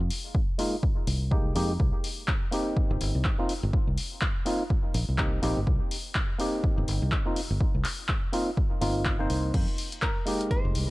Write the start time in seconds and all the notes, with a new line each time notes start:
0.00 F2
0.10 open hi-hat
0.35 kick
0.58 G#3 A#3 D#4 F4, open hi-hat
0.83 kick
1.07 C2, open hi-hat
1.31 G#3 A#3 D#4 G4, kick
1.55 F2 G#3 A#3 D#4 G4, open hi-hat
1.80 C2, kick
2.04 open hi-hat
2.28 kick, clap
2.51 A#3 C4 D#4 G4, open hi-hat
2.77 kick
2.91 G1
3.01 G1, open hi-hat
3.15 C2
3.25 kick, clap
3.39 A#3 C4 D#4 F4
3.49 open hi-hat
3.63 G1
3.73 kick
3.87 C2
3.98 open hi-hat
4.21 kick, clap
4.45 A#3 C4 D#4 F4, open hi-hat
4.70 kick
4.94 A#1, open hi-hat
5.09 C2
5.18 A#3 C4 D#4 G4, kick, clap
5.42 A#1 A#3 C4 D#4 G4, open hi-hat
5.57 G1
5.67 C2, kick
5.91 open hi-hat
6.15 kick, clap
6.38 A#3 C4 D#4 G4, open hi-hat
6.64 kick
6.78 G1
6.88 G1, open hi-hat
7.02 C2
7.12 kick, clap
7.26 A#3 C4 D#4 F4
7.36 open hi-hat
7.50 G1
7.61 kick
7.75 C2
7.84 clap, open hi-hat
8.09 kick, clap
8.33 A#3 C4 D#4 F4, open hi-hat
8.57 kick
8.81 G1 A#3 C4 D#4 F4, open hi-hat
9.05 kick, clap
9.19 A#3 C4 D#4 C5
9.30 C2, open hi-hat
9.54 F2, kick, closed hi-hat, crash
9.68 closed hi-hat
9.78 open hi-hat
9.92 closed hi-hat
10.02 A#4, kick, clap, closed hi-hat
10.26 G#3 A#3 D#4 G4, open hi-hat
10.41 closed hi-hat
10.51 C5, kick, closed hi-hat
10.65 F1
10.75 C2, open hi-hat